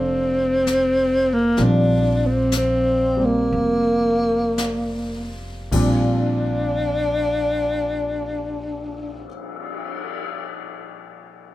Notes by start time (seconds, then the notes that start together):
Already playing: F1 F3 G3 C4 D4 A4
0.67 snare, hi-hat pedal
1.33 A#3
1.57 A#1 F3 G3 C4 D4, brush sweep, snare
1.64 D4
2.27 C4
2.52 snare, hi-hat pedal
2.57 C4
3.17 G3 A#3 C4
3.25 A#3
3.52 F1, brush sweep
4.58 snare, hi-hat pedal
5.71 A#1 A#2 F3 G3 C4 D4, kick, crash
5.78 D4
6.52 cymbal swell